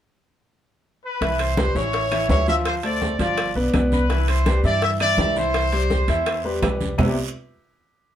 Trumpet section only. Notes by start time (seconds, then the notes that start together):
1.05 B4
1.40 C5
1.77 C#5
2.31 C#5
2.49 E5
2.67 C5
2.85 D5
3.20 D5
3.93 B4
4.29 C5
4.65 D5
4.83 E5
5.01 D5
5.38 C5